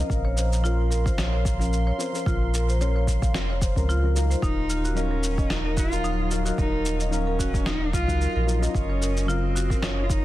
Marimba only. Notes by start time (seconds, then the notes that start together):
0.25 C#5
0.37 C5
0.64 F4
0.91 A#4
1.06 C5
1.18 C#5
1.33 C#5
1.60 F5
1.87 C#5
1.99 C5
2.27 F4
2.54 A#4
2.68 C5
2.81 C#5
2.96 C#5
3.23 F5
3.50 C#5
3.62 C5
3.89 F4
4.16 A#4
4.30 C5
4.43 D#4
4.70 F4
4.85 F#4
4.97 A#4
5.11 A#4
5.38 D#5
5.65 A#4
5.77 F#4
6.04 D#4
6.31 F4
6.46 F#4
6.58 A#4
6.73 A#4
7.00 D#5
7.27 A#4
7.39 F#4
7.66 D#4
7.94 F4
8.08 F#4
8.21 A#4
8.36 A#4
8.63 D#5
8.89 C#5
9.02 A#4
9.28 F4
9.55 F#4
9.70 A#4
9.82 C#5
9.97 C#5